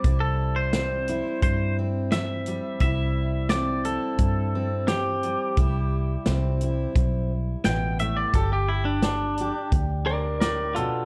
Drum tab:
HH |x-xxx-xx|x-xxx-xx|x-xxx-xx|x-xxx-xx|
SD |--o---o-|--o---o-|--o---o-|--o---o-|
BD |o---o---|o---o---|o---o---|o---o---|